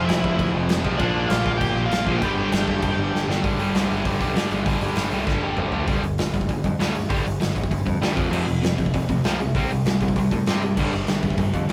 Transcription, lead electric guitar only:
0, 0, Header, 1, 2, 480
1, 0, Start_track
1, 0, Tempo, 305033
1, 1580, Time_signature, 4, 2, 24, 8
1, 18450, End_track
2, 0, Start_track
2, 0, Title_t, "Lead electric guitar"
2, 0, Program_c, 0, 29
2, 91, Note_on_c, 0, 76, 82
2, 119, Note_on_c, 0, 64, 69
2, 783, Note_off_c, 0, 76, 0
2, 798, Note_off_c, 0, 64, 0
2, 1539, Note_on_c, 0, 74, 95
2, 1559, Note_on_c, 0, 62, 72
2, 2013, Note_off_c, 0, 62, 0
2, 2023, Note_on_c, 0, 77, 110
2, 2052, Note_off_c, 0, 74, 0
2, 2055, Note_on_c, 0, 65, 82
2, 2371, Note_off_c, 0, 77, 0
2, 2390, Note_on_c, 0, 77, 90
2, 2399, Note_off_c, 0, 65, 0
2, 2477, Note_off_c, 0, 77, 0
2, 2483, Note_on_c, 0, 79, 124
2, 2526, Note_on_c, 0, 67, 94
2, 2918, Note_off_c, 0, 79, 0
2, 2924, Note_on_c, 0, 77, 97
2, 2975, Note_off_c, 0, 67, 0
2, 2985, Note_on_c, 0, 65, 72
2, 3421, Note_off_c, 0, 77, 0
2, 3427, Note_on_c, 0, 79, 95
2, 3443, Note_off_c, 0, 65, 0
2, 3497, Note_on_c, 0, 67, 74
2, 5072, Note_off_c, 0, 79, 0
2, 5106, Note_off_c, 0, 67, 0
2, 18450, End_track
0, 0, End_of_file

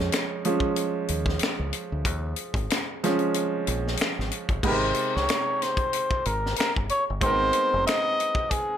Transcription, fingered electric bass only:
0, 0, Header, 1, 3, 480
1, 0, Start_track
1, 0, Key_signature, -4, "major"
1, 0, Tempo, 645161
1, 1524, Time_signature, 4, 2, 24, 8
1, 6529, End_track
2, 0, Start_track
2, 0, Title_t, "Fingered electric bass"
2, 0, Program_c, 0, 33
2, 814, Note_on_c, 0, 39, 90
2, 1017, Note_off_c, 0, 39, 0
2, 1186, Note_on_c, 0, 37, 76
2, 1273, Note_off_c, 0, 37, 0
2, 1429, Note_on_c, 0, 38, 89
2, 1532, Note_off_c, 0, 38, 0
2, 1532, Note_on_c, 0, 39, 107
2, 1736, Note_off_c, 0, 39, 0
2, 1894, Note_on_c, 0, 32, 92
2, 1986, Note_off_c, 0, 32, 0
2, 2737, Note_on_c, 0, 34, 100
2, 2939, Note_off_c, 0, 34, 0
2, 3116, Note_on_c, 0, 32, 90
2, 3198, Note_off_c, 0, 32, 0
2, 3346, Note_on_c, 0, 31, 82
2, 3432, Note_off_c, 0, 31, 0
2, 3452, Note_on_c, 0, 32, 107
2, 3656, Note_off_c, 0, 32, 0
2, 3841, Note_on_c, 0, 36, 97
2, 3921, Note_off_c, 0, 36, 0
2, 4658, Note_on_c, 0, 32, 103
2, 4860, Note_off_c, 0, 32, 0
2, 5040, Note_on_c, 0, 31, 91
2, 5121, Note_off_c, 0, 31, 0
2, 5282, Note_on_c, 0, 31, 93
2, 5376, Note_off_c, 0, 31, 0
2, 5376, Note_on_c, 0, 32, 109
2, 5578, Note_off_c, 0, 32, 0
2, 5756, Note_on_c, 0, 29, 99
2, 5838, Note_off_c, 0, 29, 0
2, 6529, End_track
3, 0, Start_track
3, 0, Title_t, "Muted fingered electric bass strokes"
3, 1051, Note_on_c, 9, 29, 48
3, 1125, Note_off_c, 9, 29, 0
3, 6529, End_track
0, 0, End_of_file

